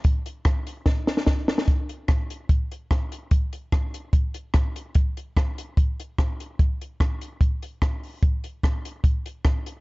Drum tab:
HH |x-x-x-x---------|x-x-x-x-x-x-x-x-|x-x-x-x-x-x-x-x-|x-x-x-x-x-x-x-x-|
SD |----r---o-ooo-oo|----r-------r---|----r-------r---|----r-------r---|
BD |o---o---o---o---|o---o---o---o---|o---o---o---o---|o---o---o---o---|

HH |x-x-x-x-x-x-x-o-|x-x-x-x-x-x-x-x-|
SD |----r-------r---|----r-------r---|
BD |o---o---o---o---|o---o---o---o---|